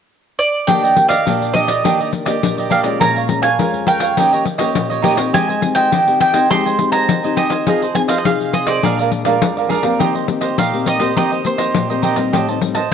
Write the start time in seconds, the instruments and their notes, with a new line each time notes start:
0.39 mandolin D5
0.67 nylon-string guitar D#3 A#3 D4 G4, cavaquinho D4 G4 D5 D#5, mandolin G5, pandeiro
0.83 cavaquinho G4 D5 D#5, pandeiro
0.96 nylon-string guitar A#3 D4 G4, muted cavaquinho stroke, pandeiro
1.09 cavaquinho G4 D5 D#5, mandolin F5, pandeiro
1.26 nylon-string guitar A#2 A#3 D4 G4, cavaquinho D4 G4 D5 D#5, pandeiro
1.42 pandeiro
1.54 cavaquinho D4 G4 D5 D#5, mandolin D#5, pandeiro
1.68 cavaquinho G4 D5 D#5, pandeiro
1.84 nylon-string guitar D#3 A#3 D4 G4, cavaquinho D4 G4 D5 D#5, pandeiro
1.99 cavaquinho G4 D5 D#5, pandeiro
2.12 muted cavaquinho stroke, pandeiro
2.26 nylon-string guitar A#3 D4 G4, cavaquinho G4 D5 D#5, pandeiro
2.43 nylon-string guitar A#2 A#3 D4 G4, pandeiro
2.58 cavaquinho G4 D5 D#5, pandeiro
2.70 cavaquinho D4 G4 D5 D#5, mandolin F5, pandeiro
2.83 nylon-string guitar G#3 C#4 F4, cavaquinho G4 D5 D#5, pandeiro
3.00 nylon-string guitar A#2, cavaquinho A#4 C#5 F5 G#5, mandolin A#5, pandeiro
3.15 cavaquinho C#5 F5 G#5, pandeiro
3.28 nylon-string guitar G#3 C#4 F4, muted cavaquinho stroke, pandeiro
3.42 cavaquinho C#5 F5 G#5, mandolin G#5, pandeiro
3.59 nylon-string guitar F2 G#3 C#4 F4, cavaquinho A#4 C#5 F5 G#5, pandeiro
3.74 pandeiro
3.87 cavaquinho A#4 C#5 F5 G#5, mandolin G5, pandeiro
4.00 cavaquinho C#5 F5 G#5, pandeiro
4.17 nylon-string guitar D#3 A#3 C#4 G4, cavaquinho D#4 G4 C#5 D#5, pandeiro
4.33 cavaquinho G4 C#5 D#5, pandeiro
4.45 muted cavaquinho stroke, pandeiro
4.58 nylon-string guitar A#3 C#4 G4, cavaquinho G4 C#5 D#5, pandeiro
4.75 nylon-string guitar A#2, pandeiro
4.90 cavaquinho G4 C#5 D#5, pandeiro
5.02 nylon-string guitar A#3 C#4 G4, cavaquinho D#4 G4 C#5 D#5, mandolin D#5, pandeiro
5.16 nylon-string guitar C4 D#4 G4, cavaquinho G4 C#5 D#5, pandeiro
5.33 nylon-string guitar G#3, cavaquinho G4 C5 D#5 G#5, mandolin G#5, pandeiro
5.48 cavaquinho C5 D#5 G#5, pandeiro
5.62 nylon-string guitar C4 D#4 G4, muted cavaquinho stroke, pandeiro
5.75 cavaquinho C5 D#5 G#5, mandolin G5, pandeiro
5.92 nylon-string guitar D#3, cavaquinho G4 C5 D#5 G#5, pandeiro
6.07 nylon-string guitar C4 D#4 G4, pandeiro
6.20 cavaquinho G4 C5 D#5 G#5, mandolin G5, pandeiro
6.34 nylon-string guitar C4 D#4 G4, cavaquinho C5 D#5 G#5, pandeiro
6.50 nylon-string guitar G#3 C4 D#4 G4, cavaquinho G4 C5 D#5 G#5, mandolin C6, pandeiro
6.65 cavaquinho C5 D#5 G#5, pandeiro
6.78 nylon-string guitar C4 D#4 G4, muted cavaquinho stroke, pandeiro
6.92 cavaquinho C5 D#5 G#5, mandolin A#5, pandeiro
7.09 nylon-string guitar D#3, pandeiro
7.23 nylon-string guitar C4 D#4 G4, cavaquinho C5 D#5 G#5, pandeiro
7.36 cavaquinho G4 C5 D#5 G#5, mandolin D#5, pandeiro
7.50 cavaquinho C5 D#5 G#5, pandeiro
7.67 nylon-string guitar F3 C4 D#4 G#4, cavaquinho F4 G#4 C5 D#5, pandeiro
7.82 cavaquinho G#4 C5 D#5, pandeiro
7.95 nylon-string guitar C4 D#4 G#4, mandolin G#5, muted cavaquinho stroke, pandeiro
8.08 cavaquinho G#4 C5 D#5, mandolin F5, pandeiro
8.18 mandolin D#5
8.25 nylon-string guitar C3 C4 D#4 G#4, cavaquinho F4 G#4 C5 D#5, mandolin F5, pandeiro
8.40 pandeiro
8.52 cavaquinho F4 G#4 C5 D#5, mandolin D#5, pandeiro
8.66 cavaquinho G#4 C5 D#5, mandolin D5, pandeiro
8.83 nylon-string guitar A#2 F3 G#3 D4, cavaquinho G#4 A#4 D5 F5, pandeiro
8.99 cavaquinho A#4 D5 F5, pandeiro
9.11 muted cavaquinho stroke, pandeiro
9.25 nylon-string guitar F3 G#3 D4, cavaquinho A#4 D5 F5, pandeiro
9.41 nylon-string guitar F2 F3 G#3 D4, pandeiro
9.57 cavaquinho A#4 D5 F5, pandeiro
9.69 nylon-string guitar F3 G#3 D4, cavaquinho G#4 A#4 D5 F5, pandeiro
9.83 nylon-string guitar A#3 C4 G4, cavaquinho A#4 D5 F5, pandeiro
9.99 nylon-string guitar D#3, cavaquinho D#4 G4 C5 D#5, pandeiro
10.14 cavaquinho G4 C5 D#5, pandeiro
10.28 nylon-string guitar A#3 C4 G4, muted cavaquinho stroke, pandeiro
10.41 cavaquinho G4 C5 D#5, pandeiro
10.58 nylon-string guitar A#2, cavaquinho D#4 G4 C5 D#5, mandolin F5, pandeiro
10.73 nylon-string guitar A#3 C4 G4, pandeiro
10.86 cavaquinho D#4 G4 C5 D#5, mandolin D#5, pandeiro
11.00 nylon-string guitar A#3 C4 G4, cavaquinho G4 C5 D#5, pandeiro
11.16 nylon-string guitar D#3 A#3 C4 G4, cavaquinho D#4 G4 C5 D#5, mandolin D#5, pandeiro
11.32 cavaquinho G4 C5 D#5, pandeiro
11.44 nylon-string guitar A#3 C4 G4, mandolin C5, muted cavaquinho stroke, pandeiro
11.58 cavaquinho G4 C5 D#5, pandeiro
11.75 nylon-string guitar A#2, pandeiro
11.90 nylon-string guitar A#3 C4 G4, cavaquinho G4 C5 D#5, pandeiro
12.02 cavaquinho D#4 G4 C5 D#5, pandeiro
12.16 nylon-string guitar G3 C4 D#4, cavaquinho G4 C5 D#5, pandeiro
12.33 nylon-string guitar A2, cavaquinho G4 C5 D#5 A5, pandeiro
12.49 nylon-string guitar G3 C4 D#4, cavaquinho C5 D#5 A5, pandeiro
12.61 nylon-string guitar G3 C4 D#4, muted cavaquinho stroke, pandeiro
12.75 cavaquinho C5 D#5 A5, pandeiro